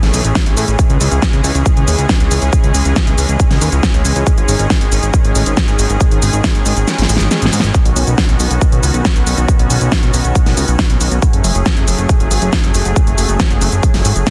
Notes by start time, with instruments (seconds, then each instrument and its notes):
Already playing: supersaw synth E3 A3 C#4 G#4
0.03 analog synth bass A1, snare, open hi-hat, shaker
0.14 analog synth bass B1, open hi-hat, shaker
0.24 analog synth bass A1, closed hi-hat, shaker
0.35 kick, snare, closed hi-hat, shaker
0.46 analog synth bass A1, closed hi-hat, shaker
0.57 analog synth bass A2, open hi-hat, shaker
0.68 analog synth bass A1, closed hi-hat, shaker
0.79 supersaw synth G#3 G#4, kick, closed hi-hat, shaker
0.90 analog synth bass C#2, closed hi-hat, shaker
1.01 analog synth bass C#2, open hi-hat, shaker
1.11 analog synth bass C#2, closed hi-hat, shaker
1.22 kick, snare, closed hi-hat, shaker
1.33 analog synth bass C#2, closed hi-hat, shaker
1.44 analog synth bass C#2, open hi-hat, shaker
1.55 analog synth bass C#2, closed hi-hat, shaker
1.66 kick, closed hi-hat, shaker
1.77 analog synth bass C#2, closed hi-hat, shaker
1.88 analog synth bass D#2, open hi-hat, shaker
1.98 analog synth bass C#2, closed hi-hat, shaker
2.09 kick, snare, closed hi-hat, shaker
2.20 analog synth bass C#2, closed hi-hat, shaker
2.31 analog synth bass C#2, open hi-hat, shaker
2.42 analog synth bass C#2, closed hi-hat, shaker
2.53 kick, closed hi-hat, shaker
2.64 analog synth bass C#2, closed hi-hat, shaker
2.74 analog synth bass C#2, open hi-hat, shaker
2.85 analog synth bass C#2, closed hi-hat, shaker
2.96 kick, snare, closed hi-hat, shaker
3.07 analog synth bass C#2, closed hi-hat, shaker
3.18 analog synth bass C#2, open hi-hat, shaker
3.29 analog synth bass C#2, closed hi-hat, shaker
3.40 kick, closed hi-hat, shaker
3.51 analog synth bass C#2, snare, open hi-hat, shaker
3.61 analog synth bass D#2, open hi-hat, shaker
3.72 analog synth bass C#2, closed hi-hat, shaker
3.83 kick, snare, closed hi-hat, shaker
3.94 analog synth bass C#2, closed hi-hat, shaker
4.05 analog synth bass C#2, open hi-hat, shaker
4.16 analog synth bass C#2, closed hi-hat, shaker
4.27 supersaw synth D#3 G#4, kick, closed hi-hat, shaker
4.37 analog synth bass G#1, closed hi-hat, shaker
4.48 analog synth bass G#1, open hi-hat, shaker
4.59 analog synth bass G#1, closed hi-hat, shaker
4.70 kick, snare, closed hi-hat, shaker
4.81 analog synth bass G#1, closed hi-hat, shaker
4.92 analog synth bass G#1, open hi-hat, shaker
5.03 analog synth bass G#1, closed hi-hat, shaker
5.14 kick, closed hi-hat, shaker
5.24 analog synth bass G#1, closed hi-hat, shaker
5.35 analog synth bass A1, open hi-hat, shaker
5.46 analog synth bass G#1, closed hi-hat, shaker
5.57 kick, snare, closed hi-hat, shaker
5.68 analog synth bass G#1, closed hi-hat, shaker
5.79 analog synth bass G#1, open hi-hat, shaker
5.90 analog synth bass G#1, closed hi-hat, shaker
6.01 kick, closed hi-hat, shaker
6.11 analog synth bass G#1, closed hi-hat, shaker
6.22 analog synth bass G#1, open hi-hat, shaker
6.33 analog synth bass G#1, closed hi-hat, shaker
6.44 kick, snare, closed hi-hat, shaker
6.55 analog synth bass G#1, closed hi-hat, shaker
6.66 analog synth bass G#1, open hi-hat, shaker
6.77 analog synth bass G#1, closed hi-hat, shaker
6.88 snare, closed hi-hat, shaker
6.98 analog synth bass G#1, snare, open hi-hat, shaker
7.09 analog synth bass A1, open hi-hat, shaker
7.17 analog synth bass G#1, snare, closed hi-hat, shaker
7.31 snare, closed hi-hat, shaker
7.42 analog synth bass G#1, snare, closed hi-hat, shaker
7.53 analog synth bass G#2, open hi-hat, shaker
7.60 analog synth bass G#1, snare, closed hi-hat, shaker
7.74 supersaw synth D#3 B3 C#4 F#4, kick, closed hi-hat, shaker
7.85 analog synth bass B1, closed hi-hat, shaker
7.96 analog synth bass B1, open hi-hat, shaker
8.07 analog synth bass B1, closed hi-hat, shaker
8.18 kick, snare, closed hi-hat, shaker
8.29 analog synth bass B1, closed hi-hat, shaker
8.40 analog synth bass B1, open hi-hat, shaker
8.51 analog synth bass B1, closed hi-hat, shaker
8.61 kick, closed hi-hat, shaker
8.72 analog synth bass B1, closed hi-hat, shaker
8.83 analog synth bass C#2, open hi-hat, shaker
8.94 analog synth bass B1, closed hi-hat, shaker
9.05 kick, snare, closed hi-hat, shaker
9.16 analog synth bass B1, closed hi-hat, shaker
9.27 analog synth bass B1, open hi-hat, shaker
9.38 analog synth bass B1, closed hi-hat, shaker
9.48 kick, closed hi-hat, shaker
9.59 analog synth bass B1, closed hi-hat, shaker
9.70 analog synth bass B1, open hi-hat, shaker
9.81 analog synth bass B1, closed hi-hat, shaker
9.92 kick, snare, closed hi-hat, shaker
10.03 analog synth bass B1, closed hi-hat, shaker
10.14 analog synth bass B1, open hi-hat, shaker
10.24 analog synth bass B1, closed hi-hat, shaker
10.35 kick, closed hi-hat, shaker
10.46 analog synth bass B1, snare, open hi-hat, shaker
10.57 analog synth bass C#2, open hi-hat, shaker
10.68 analog synth bass B1, closed hi-hat, shaker
10.79 kick, snare, closed hi-hat, shaker
10.90 analog synth bass B1, closed hi-hat, shaker
11.01 analog synth bass B1, open hi-hat, shaker
11.11 analog synth bass B1, closed hi-hat, shaker
11.22 supersaw synth F#3 A3 G#4, kick, closed hi-hat, shaker
11.33 analog synth bass F#1, closed hi-hat, shaker
11.44 analog synth bass F#1, open hi-hat, shaker
11.55 analog synth bass F#1, closed hi-hat, shaker
11.66 kick, snare, closed hi-hat, shaker
11.77 analog synth bass F#1, closed hi-hat, shaker
11.87 analog synth bass F#1, open hi-hat, shaker
11.98 analog synth bass F#1, closed hi-hat, shaker
12.09 kick, closed hi-hat, shaker
12.20 analog synth bass F#1, closed hi-hat, shaker
12.31 analog synth bass G#1, open hi-hat, shaker
12.42 analog synth bass F#1, closed hi-hat, shaker
12.53 kick, snare, closed hi-hat, shaker
12.64 analog synth bass F#1, closed hi-hat, shaker
12.74 analog synth bass F#1, open hi-hat, shaker
12.85 analog synth bass F#1, closed hi-hat, shaker
12.96 kick, closed hi-hat, shaker
13.07 analog synth bass F#1, closed hi-hat, shaker
13.18 analog synth bass F#1, open hi-hat, shaker
13.29 analog synth bass F#1, closed hi-hat, shaker
13.40 kick, snare, closed hi-hat, shaker
13.50 analog synth bass F#1, closed hi-hat, shaker
13.61 analog synth bass F#1, open hi-hat, shaker
13.72 analog synth bass F#1, closed hi-hat, shaker
13.83 kick, closed hi-hat, shaker
13.94 analog synth bass F#1, snare, open hi-hat, shaker
14.05 analog synth bass G#1, open hi-hat, shaker
14.16 analog synth bass F#1, closed hi-hat, shaker
14.27 kick, snare, closed hi-hat, shaker